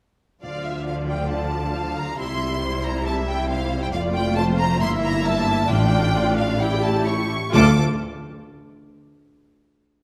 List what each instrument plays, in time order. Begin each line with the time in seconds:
0.43 double bass section D2, timpani D3, cello section D3, viola section F3 F4, violin section D5 F5
0.65 violin section E5
0.87 violin section D5 F5
1.09 violin section G5
1.31 violin section A5
1.75 violin section F5
1.98 violin section A#5
2.19 double bass section C2, cello section C3, viola section G3 E4, violin section E5 C6
2.63 violin section C5
2.85 violin section A#5
3.06 violin section E5 A5
3.28 violin section G5
3.49 violin section C5 F5
3.83 violin section G5
3.93 double bass section F1, cello section F2, viola section A3 F4, violin section D5 F5
4.14 violin section G5
4.36 violin section C5 A5
4.58 violin section A#5
4.81 double bass section G1, cello section G2, viola section A#3 E4, violin section E5 C6
5.03 violin section A#5
5.25 violin section A5
5.70 double bass section A1, cello section A2, timpani A2, viola section D4 F4, violin section D5 G5
6.38 violin section F5
6.61 viola section E4 G4, violin section G5
6.83 violin section A5
7.07 violin section C#5 C#6
7.54 cello section D2, double bass section D2, timpani D3, viola section A3 F4, violin section A4 A5 D6